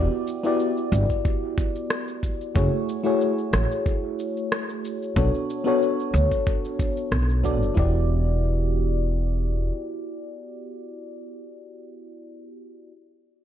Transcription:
0.00 0.40 B3 medium
0.00 0.40 E4 medium
0.00 0.40 F#4 medium
0.00 0.41 G4 medium
0.00 0.41 D5 medium
0.27 shaker medium
0.43 2.51 B3 medium
0.43 2.52 E4 medium
0.43 2.52 F#4 medium
0.43 2.52 G4 medium
0.43 2.53 D5 loud
0.43 shaker soft
0.60 shaker soft
0.77 shaker soft
0.92 1.04 G1 loud
0.92 shaker medium
1.10 kick medium
1.10 shaker soft
1.25 kick loud
1.25 shaker soft
1.58 kick loud
1.58 shaker medium
1.76 shaker soft
1.90 cross-stick medium
1.90 shaker soft
2.08 shaker soft
2.23 kick medium
2.23 shaker medium
2.41 shaker soft
2.55 2.67 F#1 loud
2.55 3.01 A3 medium
2.55 3.01 E4 medium
2.55 3.01 F#4 medium
2.55 3.01 G#4 medium
2.55 3.02 C#5 medium
2.55 kick loud
2.55 shaker soft
2.89 shaker medium
3.03 5.12 A3 medium
3.03 5.12 E4 medium
3.03 5.12 F#4 medium
3.03 5.13 G#4 medium
3.03 5.13 C#5 medium
3.03 shaker soft
3.21 shaker soft
3.38 shaker soft
3.53 3.65 A1 loud
3.53 cross-stick medium
3.53 shaker medium
3.71 shaker soft
3.86 kick loud
3.86 shaker soft
4.19 shaker medium
4.37 shaker soft
4.52 cross-stick medium
4.52 shaker soft
4.69 shaker soft
4.85 shaker medium
5.02 shaker soft
5.16 5.28 B1 loud
5.16 5.62 B3 medium
5.16 5.62 D4 medium
5.16 5.62 F#4 medium
5.16 5.62 A4 medium
5.16 5.63 C#5 medium
5.16 kick loud
5.16 shaker soft
5.35 shaker soft
5.50 shaker medium
5.64 7.40 B3 loud
5.64 7.41 D4 medium
5.64 7.41 F#4 medium
5.64 7.42 A4 medium
5.64 7.42 C#5 loud
5.64 shaker soft
5.83 shaker soft
6.00 shaker soft
6.14 6.25 D2 loud
6.14 shaker medium
6.32 kick medium
6.32 shaker soft
6.47 kick loud
6.47 shaker soft
6.65 shaker soft
6.79 kick loud
6.79 shaker medium
6.97 shaker soft
7.12 7.62 B1 loud
7.12 cross-stick medium
7.12 shaker soft
7.30 shaker soft
7.43 7.73 B3 medium
7.43 7.73 D4 medium
7.43 7.73 F#4 medium
7.43 7.74 A4 medium
7.43 7.74 D5 medium
7.43 kick medium
7.43 shaker medium
7.62 7.72 F#1 medium
7.62 shaker soft
7.74 9.69 E1 medium
7.74 11.83 B3 medium
7.74 11.83 E4 medium
7.74 11.84 F#4 medium
7.74 11.84 G4 medium
7.74 kick loud
7.79 11.85 D5 medium

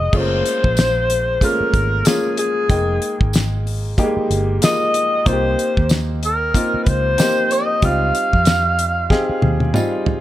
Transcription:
0.00 0.11 F1 medium
0.00 0.13 G#3 medium
0.00 0.15 B3 medium
0.00 0.15 D#4 medium
0.00 0.14 F#4 medium
0.00 0.15 G4 medium
0.00 0.19 D#5 medium
0.13 0.41 F#1 loud
0.13 1.13 G#3 medium
0.13 0.21 A3 medium
0.13 1.14 C#4 medium
0.13 1.14 F4 medium
0.13 kick loud
0.13 crash medium
0.17 1.17 A#3 medium
0.17 1.46 C5 loud
0.46 closed hi-hat medium
0.64 1.38 A#1 medium
0.64 kick medium
0.77 snare loud
0.77 closed hi-hat medium
0.77 tambourine medium
1.10 closed hi-hat medium
1.41 1.94 G#3 medium
1.41 1.49 A3 medium
1.41 1.94 C#4 medium
1.41 1.94 F4 medium
1.41 2.08 A#4 medium
1.41 kick medium
1.41 closed hi-hat medium
1.48 1.97 A#3 medium
1.60 muted fingered electric bass stroke soft
1.73 2.01 G#1 medium
1.73 kick loud
1.73 closed hi-hat medium
2.05 2.58 G#3 medium
2.05 2.58 A#3 medium
2.05 2.58 C#4 medium
2.05 2.58 F4 medium
2.05 2.38 G#4 medium
2.05 snare loud
2.05 closed hi-hat loud
2.05 tambourine medium
2.37 3.30 G#4 medium
2.37 closed hi-hat medium
2.69 2.98 F1 loud
2.69 3.69 G#3 medium
2.69 3.70 A#3 medium
2.69 3.70 D#4 medium
2.69 3.70 G5 medium
2.69 kick loud
2.69 closed hi-hat medium
3.02 closed hi-hat medium
3.21 3.94 G#1 medium
3.21 kick medium
3.33 snare loud
3.33 closed hi-hat medium
3.33 tambourine medium
3.67 open hi-hat soft
3.97 4.05 G3 medium
3.97 4.50 A#3 medium
3.97 4.50 D#4 medium
3.97 4.50 G4 loud
3.97 kick medium
3.97 closed hi-hat medium
4.04 4.53 G#3 medium
4.17 muted fingered electric bass stroke soft
4.30 4.58 G1 medium
4.30 closed hi-hat medium
4.61 5.14 G#3 medium
4.61 5.14 A#3 medium
4.61 5.14 D#4 medium
4.61 5.14 F4 medium
4.61 5.29 D#5 loud
4.61 snare loud
4.61 closed hi-hat loud
4.61 tambourine medium
4.94 closed hi-hat medium
5.25 5.54 C2 loud
5.25 6.26 A#3 medium
5.25 6.26 C4 medium
5.25 6.26 D#4 medium
5.25 5.34 F4 medium
5.25 5.91 C5 loud
5.25 kick loud
5.25 closed hi-hat medium
5.33 6.30 G4 medium
5.59 closed hi-hat medium
5.77 6.51 D#2 medium
5.77 kick medium
5.89 snare loud
5.89 closed hi-hat medium
5.89 tambourine medium
6.23 6.85 A#4 loud
6.23 closed hi-hat medium
6.54 7.06 A#3 medium
6.54 7.06 C4 medium
6.54 7.07 D#4 medium
6.54 7.07 F4 medium
6.54 kick medium
6.54 closed hi-hat medium
6.74 muted fingered electric bass stroke soft
6.83 7.15 C#2 medium
6.83 6.90 B4 medium
6.83 kick loud
6.83 closed hi-hat medium
6.89 7.54 C5 loud
7.18 7.70 A#3 medium
7.18 7.71 C4 medium
7.18 7.71 D#4 medium
7.18 7.71 G4 medium
7.18 snare loud
7.18 closed hi-hat loud
7.18 tambourine medium
7.51 7.86 D#5 loud
7.51 closed hi-hat medium
7.82 8.11 C#2 loud
7.82 8.83 G3 medium
7.82 8.83 C4 medium
7.82 8.83 D#4 medium
7.82 8.83 F4 medium
7.82 9.77 F5 loud
7.82 kick loud
7.82 closed hi-hat medium
8.15 closed hi-hat medium
8.33 9.07 F2 medium
8.33 kick medium
8.45 snare loud
8.45 closed hi-hat medium
8.45 tambourine medium
8.79 closed hi-hat medium
9.10 9.63 C4 medium
9.10 9.63 D#4 medium
9.10 9.63 G4 medium
9.10 9.63 G#4 loud
9.10 kick medium
9.10 snare medium
9.29 muted fingered electric bass stroke soft
9.42 9.71 D#2 medium
9.42 high tom medium
9.60 high tom medium
9.74 10.21 G3 medium
9.74 10.21 C4 medium
9.74 10.21 D#4 medium
9.74 10.21 F4 medium
9.74 mid tom medium
9.74 tambourine medium
10.06 floor tom medium

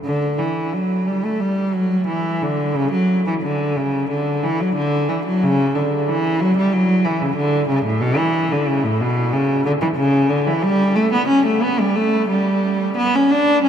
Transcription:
0.05 0.36 D3 medium
0.38 0.72 E3 medium
0.73 1.07 F#3 medium
1.07 1.24 G3 medium
1.25 1.41 A3 medium
1.40 1.74 G3 medium
1.74 2.08 F#3 medium
2.08 2.41 E3 medium
2.42 2.76 D3 medium
2.75 2.92 C#3 medium
2.92 3.25 F#3 medium
3.27 3.34 E3 medium
3.42 3.76 D3 medium
3.77 4.10 C#3 medium
4.10 4.43 D3 medium
4.43 4.60 E3 medium
4.60 4.77 F#3 medium
4.76 5.09 D3 medium
5.09 5.26 E3 medium
5.26 5.42 F#3 medium
5.43 5.76 C#3 medium
5.75 6.08 D3 medium
6.09 6.41 E3 medium
6.41 6.57 F#3 medium
6.57 6.73 G3 medium
6.72 7.05 F#3 medium
7.05 7.21 E3 medium
7.22 7.38 C#3 medium
7.36 7.68 D3 medium
7.69 7.85 C#3 medium
7.86 8.02 A2 medium
8.01 8.18 B2 medium
8.17 8.51 E3 medium
8.52 8.68 D3 medium
8.67 8.84 C#3 medium
8.85 9.00 A2 medium
9.01 9.33 B2 medium
9.33 9.65 C#3 medium
9.65 9.72 D3 medium
9.81 9.88 E3 medium
9.96 10.29 C#3 medium
10.29 10.46 D3 medium
10.47 10.63 E3 medium
10.63 10.96 G3 medium
10.96 11.12 A3 medium
11.13 11.29 B3 medium
11.28 11.45 C#4 medium
11.46 11.63 A3 medium
11.63 11.80 B3 medium
11.80 11.96 G3 medium
11.95 12.29 A3 medium
12.29 12.96 G3 medium
12.97 13.14 B3 medium
13.15 13.31 C#4 medium
13.31 13.64 D4 loud
13.64 13.69 C#4 medium

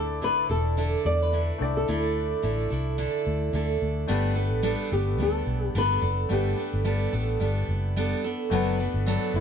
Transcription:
0.00 0.22 D2 loud
0.00 0.21 D3 medium
0.00 1.55 A3 medium
0.00 0.22 D4 medium
0.00 1.56 D4 medium
0.00 0.21 E4 medium
0.00 1.56 E4 medium
0.00 0.21 A4 medium
0.00 0.23 A4 medium
0.00 1.57 D5 medium
0.21 0.44 A1 medium
0.21 0.49 D3 medium
0.21 0.50 D4 medium
0.21 0.49 E4 medium
0.21 0.48 A4 medium
0.21 0.49 B4 loud
0.49 0.95 E1 medium
0.49 0.76 D4 soft
0.49 0.77 E4 medium
0.49 0.77 A4 medium
0.49 1.05 A4 medium
0.77 1.32 D3 medium
0.77 1.33 D4 medium
0.77 1.32 E4 medium
0.77 1.34 A4 medium
1.05 1.50 E2 medium
1.05 1.22 D5 loud
1.22 1.76 B4 medium
1.32 1.87 D3 medium
1.32 1.88 D4 medium
1.32 1.88 E4 medium
1.32 1.89 A4 medium
1.58 1.83 C2 medium
1.58 3.76 A3 medium
1.58 3.77 D4 medium
1.58 3.78 E4 medium
1.58 3.78 D5 medium
1.77 1.88 A4 medium
1.88 2.34 D2 loud
1.88 2.42 D3 medium
1.88 2.43 D4 medium
1.88 2.42 E4 medium
1.88 3.51 E4 medium
1.88 2.44 A4 loud
2.42 2.66 A1 medium
2.42 2.70 D3 medium
2.42 2.71 D4 medium
2.42 2.70 E4 medium
2.42 2.69 A4 medium
2.70 3.06 C2 medium
2.70 2.97 D4 soft
2.70 2.98 E4 medium
2.70 2.97 A4 medium
2.98 3.52 D3 medium
2.98 3.53 D4 medium
2.98 3.53 E4 medium
2.98 3.55 A4 loud
3.27 3.49 D2 loud
3.53 3.76 D2 loud
3.53 4.08 D3 medium
3.53 4.08 D4 medium
3.53 4.08 E4 medium
3.53 4.09 A4 medium
3.82 4.04 D2 medium
4.07 4.52 G1 loud
4.07 4.36 G3 medium
4.07 6.25 A3 medium
4.07 6.26 B3 medium
4.07 4.35 B3 medium
4.07 4.36 D4 loud
4.07 6.26 D4 medium
4.07 6.27 G4 medium
4.07 4.34 A4 loud
4.07 6.27 B4 medium
4.35 4.62 B3 medium
4.35 4.62 D4 medium
4.35 4.63 A4 medium
4.52 4.75 A1 medium
4.63 4.91 G3 medium
4.63 4.91 B3 medium
4.63 4.91 D4 loud
4.63 4.90 A4 loud
4.91 5.19 G1 medium
4.91 5.19 B3 medium
4.91 5.18 D4 soft
4.91 5.21 G4 medium
4.91 5.19 A4 medium
5.18 5.42 D2 loud
5.18 5.74 G3 medium
5.18 5.75 B3 medium
5.18 5.75 D4 medium
5.18 5.76 A4 medium
5.22 5.66 A4 medium
5.47 5.70 B1 medium
5.66 5.78 G4 medium
5.75 5.97 G1 loud
5.75 6.02 G3 medium
5.75 6.01 B3 medium
5.75 6.02 D4 medium
5.75 6.00 A4 medium
5.75 6.28 B4 loud
6.01 6.25 F#1 medium
6.01 6.29 B3 soft
6.01 6.28 D4 soft
6.01 6.29 A4 medium
6.29 6.53 G1 loud
6.29 6.57 G3 medium
6.29 8.46 A3 medium
6.29 8.47 B3 medium
6.29 6.57 B3 medium
6.29 6.57 D4 medium
6.29 8.47 D4 medium
6.29 8.48 G4 medium
6.29 6.56 A4 medium
6.29 8.48 B4 medium
6.33 7.38 G4 medium
6.57 6.84 B3 soft
6.57 6.84 D4 soft
6.57 6.85 A4 medium
6.73 7.06 G1 loud
6.84 7.12 G3 medium
6.84 7.13 B3 medium
6.84 7.13 D4 medium
6.84 7.12 A4 medium
7.13 7.36 A1 medium
7.13 7.40 B3 medium
7.13 7.40 D4 medium
7.13 7.40 A4 medium
7.40 7.63 G1 medium
7.40 7.95 G3 medium
7.40 7.97 B3 medium
7.40 7.97 D4 medium
7.40 7.97 A4 medium
7.68 8.14 F#1 medium
7.96 8.24 G3 medium
7.96 8.24 B3 loud
7.96 8.24 D4 medium
7.96 8.23 A4 loud
8.24 8.51 B3 medium
8.24 8.51 D4 medium
8.24 8.51 A4 medium
8.50 8.86 F#1 loud
8.50 8.79 F#3 loud
8.50 9.40 A3 medium
8.50 9.40 B3 medium
8.50 8.79 B3 loud
8.50 9.40 D4 medium
8.50 8.79 D4 loud
8.50 9.40 F#4 medium
8.50 8.78 A4 loud
8.50 9.40 B4 medium
8.79 9.06 B3 medium
8.79 9.06 D4 medium
8.79 9.06 A4 medium
8.94 9.16 G1 medium
9.06 9.34 F#3 loud
9.06 9.34 B3 loud
9.06 9.34 D4 loud
9.06 9.32 A4 loud
9.33 9.40 F#1 medium
9.33 9.40 B3 soft
9.33 9.40 D4 soft
9.33 9.40 E4 medium
9.33 9.40 A4 medium

